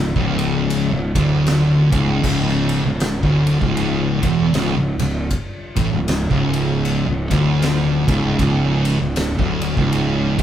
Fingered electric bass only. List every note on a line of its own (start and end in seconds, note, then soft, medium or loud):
0.00 0.13 C#1 medium
0.16 0.89 C#1 medium
0.92 1.14 C#1 medium
1.16 1.88 D1 medium
1.92 2.21 C#1 medium
2.24 2.81 C#1 medium
2.84 3.20 C#1 medium
3.23 3.59 D1 medium
3.62 4.19 C#1 loud
4.23 4.52 E1 loud
4.53 4.75 C#1 loud
4.76 4.97 C#1 medium
4.99 5.28 C#1 medium
5.77 5.91 A1 loud
5.91 6.27 C#1 medium
6.31 7.04 C#1 medium
7.07 7.28 C#1 medium
7.31 8.03 D1 loud
8.08 8.36 C#1 loud
8.39 8.96 C#1 medium
9.00 9.36 C#1 medium
9.39 9.74 D1 loud
9.77 10.34 C#1 loud
10.39 10.43 E1 loud